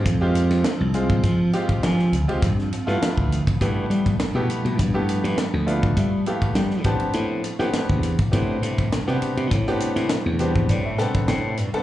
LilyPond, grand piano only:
\new Staff \with { instrumentName = "Grand piano" } { \time 4/4 \key a \minor \tempo 4 = 102 << { r2 r8 f''8 aes''4 | r1 | r4. d''8 e''8 f''8 g''8 a''8 | r1 |
r4. c''8 d''16 e''16 g''8 g''4 | } \\ { r16 <aes c' f' g'>8. r8 <aes c' f' aes'>8. r16 <aes c' f' g'>8. r8 <aes c' f' g'>16 | r8. <a b e' f'>8. r8 <a b e' g'>8. r8 <a b e' g'>8. | r16 <a b e' g'>8. r8 <a b e' f'>8. r16 <a b e' g'>8. r16 <b c' d' g'>8~ | <b c' d' g'>8 r16 <b c' d' g'>8. r8 <b c' d' g'>8. r8 <b c' d' g'>8. |
r16 <b c' d' g'>8. r8 <b c' d' g'>8. r16 <b c' d' a'>8. r8 <b c' d' a'>16 | } >> }